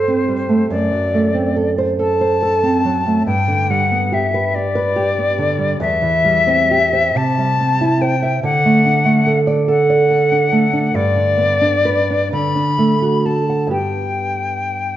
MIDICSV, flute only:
0, 0, Header, 1, 2, 480
1, 0, Start_track
1, 0, Key_signature, 1, "major"
1, 0, Tempo, 863309
1, 386, Time_signature, 6, 3, 24, 8
1, 1347, Tempo, 846262
1, 3267, Tempo, 891530
1, 4227, Tempo, 837989
1, 6147, Tempo, 930233
1, 8224, End_track
2, 0, Start_track
2, 0, Title_t, "Flute"
2, 0, Program_c, 0, 73
2, 0, Note_on_c, 0, 72, 82
2, 389, Note_off_c, 0, 72, 0
2, 393, Note_on_c, 0, 74, 89
2, 949, Note_off_c, 0, 74, 0
2, 1111, Note_on_c, 0, 81, 97
2, 1805, Note_off_c, 0, 81, 0
2, 1825, Note_on_c, 0, 79, 109
2, 2074, Note_on_c, 0, 78, 100
2, 2083, Note_off_c, 0, 79, 0
2, 2320, Note_on_c, 0, 76, 86
2, 2328, Note_off_c, 0, 78, 0
2, 2553, Note_on_c, 0, 74, 99
2, 2562, Note_off_c, 0, 76, 0
2, 3266, Note_off_c, 0, 74, 0
2, 3270, Note_on_c, 0, 76, 118
2, 4000, Note_on_c, 0, 81, 120
2, 4008, Note_off_c, 0, 76, 0
2, 4470, Note_on_c, 0, 79, 102
2, 4478, Note_off_c, 0, 81, 0
2, 4707, Note_off_c, 0, 79, 0
2, 4713, Note_on_c, 0, 78, 117
2, 5262, Note_off_c, 0, 78, 0
2, 5432, Note_on_c, 0, 78, 110
2, 6152, Note_on_c, 0, 74, 114
2, 6160, Note_off_c, 0, 78, 0
2, 6858, Note_off_c, 0, 74, 0
2, 6861, Note_on_c, 0, 83, 109
2, 7341, Note_on_c, 0, 81, 90
2, 7349, Note_off_c, 0, 83, 0
2, 7580, Note_off_c, 0, 81, 0
2, 7583, Note_on_c, 0, 79, 95
2, 8224, Note_off_c, 0, 79, 0
2, 8224, End_track
0, 0, End_of_file